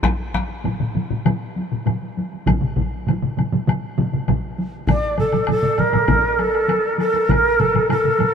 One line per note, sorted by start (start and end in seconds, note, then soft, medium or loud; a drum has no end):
0.03 taiko rim medium
0.03 taiko medium
0.03 taiko high medium
0.03 high woodblock medium
0.20 taiko high soft
0.34 taiko rim medium
0.34 taiko medium
0.34 taiko high medium
0.50 taiko high soft
0.64 taiko low-mid medium
0.64 taiko high medium
0.64 high woodblock soft
0.80 taiko low-mid medium
0.80 taiko high soft
0.95 taiko low-mid medium
0.95 taiko high medium
1.10 taiko low-mid medium
1.25 taiko low-mid loud
1.25 taiko high medium
1.25 high woodblock medium
1.42 taiko high soft
1.56 taiko high medium
1.72 taiko low-mid medium
1.72 taiko high soft
1.86 taiko low-mid medium
1.86 taiko high medium
1.86 high woodblock soft
2.02 taiko high soft
2.17 taiko high medium
2.33 taiko high soft
2.46 taiko medium
2.46 taiko low-mid medium
2.46 taiko mid medium
2.46 taiko high medium
2.46 high woodblock medium
2.61 taiko low-mid medium
2.61 taiko mid medium
2.61 taiko high soft
2.76 taiko medium
2.76 taiko low-mid medium
2.76 taiko mid medium
2.76 taiko high medium
2.94 taiko high soft
3.07 taiko low-mid medium
3.07 taiko mid medium
3.07 taiko high medium
3.07 high woodblock soft
3.22 taiko low-mid medium
3.22 taiko mid medium
3.22 taiko high soft
3.37 taiko low-mid medium
3.37 taiko mid medium
3.37 taiko high medium
3.37 high woodblock soft
3.52 taiko low-mid medium
3.52 taiko mid medium
3.52 taiko high medium
3.67 taiko low-mid medium
3.67 taiko mid medium
3.67 taiko high medium
3.67 high woodblock medium
3.85 taiko high soft
3.98 taiko low-mid medium
3.98 taiko mid medium
3.98 taiko high medium
4.13 taiko low-mid medium
4.13 taiko mid medium
4.13 taiko high soft
4.28 taiko medium
4.28 taiko low-mid medium
4.28 taiko mid medium
4.28 taiko high medium
4.28 high woodblock soft
4.44 taiko high soft
4.59 taiko high medium
4.75 taiko high soft
4.87 5.17 D5 medium
4.87 taiko medium
4.87 taiko low-mid loud
4.87 taiko mid medium
4.87 taiko high medium
4.87 high woodblock medium
5.18 5.47 A4 medium
5.18 taiko low-mid medium
5.18 taiko mid medium
5.18 taiko high soft
5.18 high woodblock soft
5.32 taiko low-mid medium
5.32 taiko mid medium
5.32 taiko high soft
5.32 high woodblock soft
5.47 5.81 A4 medium
5.47 taiko low-mid medium
5.47 taiko mid medium
5.47 taiko high medium
5.47 high woodblock medium
5.63 taiko low-mid medium
5.63 taiko mid medium
5.78 6.41 A#4 medium
5.78 taiko low-mid medium
5.78 taiko mid medium
5.78 taiko high medium
5.78 high woodblock soft
5.93 taiko low-mid medium
5.93 taiko mid medium
5.93 taiko high soft
5.93 high woodblock soft
6.08 taiko loud
6.08 taiko low-mid medium
6.08 taiko mid medium
6.08 taiko high medium
6.08 high woodblock soft
6.39 6.99 A4 medium
6.39 taiko high medium
6.39 high woodblock soft
6.55 high woodblock soft
6.69 taiko high medium
6.69 high woodblock medium
6.99 7.32 A4 medium
6.99 taiko high medium
6.99 high woodblock soft
7.14 taiko high medium
7.14 high woodblock soft
7.29 7.61 A#4 medium
7.29 taiko medium
7.29 taiko low-mid loud
7.29 taiko mid loud
7.29 taiko high medium
7.29 high woodblock medium
7.60 7.90 A4 medium
7.60 taiko low-mid medium
7.60 taiko mid medium
7.60 taiko high soft
7.60 high woodblock soft
7.74 taiko low-mid medium
7.74 taiko mid medium
7.74 taiko high soft
7.74 high woodblock soft
7.89 8.34 A4 medium
7.89 taiko low-mid medium
7.89 taiko mid medium
7.89 taiko high medium
7.89 high woodblock medium
8.04 taiko low-mid medium
8.04 taiko mid medium
8.18 taiko low-mid medium
8.18 taiko mid medium
8.18 taiko high medium
8.18 high woodblock soft